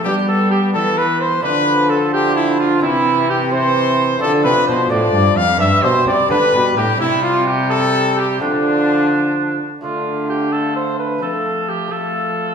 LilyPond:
<<
  \new Staff \with { instrumentName = "Cor anglais" } { \time 6/8 \key d \dorian \tempo 4. = 86 g'8 a'8 g'8 a'8 b'8 c''8 | b'4 a'8 g'8 e'8 f'8 | e'4 g'8 c''4. | a'8 b'8 c''8 d''4 f''8 |
e''8 c''8 d''8 b'4 g'8 | e'8 f'8 g'8 a'4 g'8 | d'2~ d'8 r8 | f'4 g'8 a'8 c''8 b'8 |
a'4 g'8 a'4. | }
  \new Staff \with { instrumentName = "Cornet" } { \time 6/8 \key d \dorian g'8 a'8 g'8 a'8 b'8 c''8 | b'4 a'8 g'8 e'8 f'8 | e'4 g'8 c''4. | a'8 b'8 c''8 d''4 f''8 |
e''8 c''8 d''8 b'4 g'8 | e'8 f'8 g'8 a'4 g'8 | d'2~ d'8 r8 | f''4. f''4. |
f''4. f''4. | }
  \new Staff \with { instrumentName = "Lute" } { \time 6/8 \key d \dorian <b d'>2. | <a d'>2. | <c' e'>4. <c' e'>4. | <a d'>4. <a d'>4. |
<b d'>4. <b d'>4. | <c' e'>2. | <a f'>2. | <a d'>2. |
<a c'>4. <a c'>4. | }
  \new Staff \with { instrumentName = "Lute" } { \clef bass \time 6/8 \key d \dorian g4. e4. | d2. | c2. | d8 c8 b,8 a,8 g,8 f,8 |
g,8 b,8 c8 d8 b,8 a,8 | c2. | d2~ d8 r8 | d2. |
f2. | }
  \new Staff \with { instrumentName = "Trombone" } { \clef bass \time 6/8 \key d \dorian b2. | f2. | e4. e4. | f2. |
g4. g4. | g2. | f2~ f8 r8 | a4. a4. |
a4. a4. | }
  \new Staff \with { instrumentName = "Cello" } { \clef bass \time 6/8 \key d \dorian g4. e4. | d2. | c2. | d8 c8 b,8 a,8 g,8 f,8 |
g,8 b,8 c8 d8 b,8 a,8 | c2. | d2~ d8 r8 | d2. |
f2. | }
>>